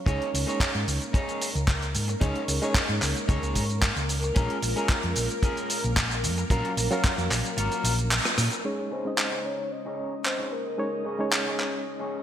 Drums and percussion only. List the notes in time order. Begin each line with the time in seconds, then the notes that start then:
0.06 kick, closed hi-hat, shaker
0.22 closed hi-hat
0.35 open hi-hat, shaker
0.49 closed hi-hat, shaker
0.60 kick, clap, closed hi-hat, shaker
0.75 closed hi-hat
0.88 open hi-hat, shaker
1.02 closed hi-hat, shaker
1.14 kick, closed hi-hat, shaker
1.29 closed hi-hat, shaker
1.41 open hi-hat, shaker
1.55 closed hi-hat, shaker
1.68 kick, clap, closed hi-hat, shaker
1.82 closed hi-hat, shaker
1.95 open hi-hat, shaker
2.09 closed hi-hat, shaker
2.21 kick, closed hi-hat, shaker
2.36 closed hi-hat
2.48 open hi-hat, shaker
2.63 shaker
2.75 kick, clap, closed hi-hat, shaker
2.89 closed hi-hat
3.02 clap, open hi-hat, shaker
3.17 closed hi-hat, shaker
3.29 kick, closed hi-hat, shaker
3.43 closed hi-hat, shaker
3.55 kick, open hi-hat, shaker
3.70 closed hi-hat, shaker
3.82 kick, clap, closed hi-hat, shaker
3.96 closed hi-hat, shaker
4.09 open hi-hat, shaker
4.23 closed hi-hat, shaker
4.36 kick, closed hi-hat, shaker
4.50 closed hi-hat
4.62 open hi-hat, shaker
4.77 closed hi-hat, shaker
4.89 kick, clap, closed hi-hat, shaker
5.03 closed hi-hat
5.16 open hi-hat, shaker
5.30 closed hi-hat, shaker
5.43 kick, closed hi-hat, shaker
5.57 closed hi-hat, shaker
5.70 open hi-hat, shaker
5.84 closed hi-hat, shaker
5.96 kick, clap, closed hi-hat, shaker
6.11 closed hi-hat, shaker
6.24 open hi-hat, shaker
6.38 closed hi-hat, shaker
6.50 kick, closed hi-hat, shaker
6.65 closed hi-hat
6.77 open hi-hat, shaker
6.92 closed hi-hat, shaker
7.04 kick, clap, closed hi-hat, shaker
7.18 closed hi-hat, shaker
7.31 clap, open hi-hat, shaker
7.45 closed hi-hat, shaker
7.58 closed hi-hat, shaker
7.72 closed hi-hat, shaker
7.85 open hi-hat, shaker
7.99 closed hi-hat, shaker
8.11 clap, closed hi-hat, shaker
8.25 cross-stick, closed hi-hat, shaker
8.38 cross-stick, open hi-hat, shaker
8.52 closed hi-hat, shaker
9.18 clap
10.25 clap
11.33 clap
11.60 clap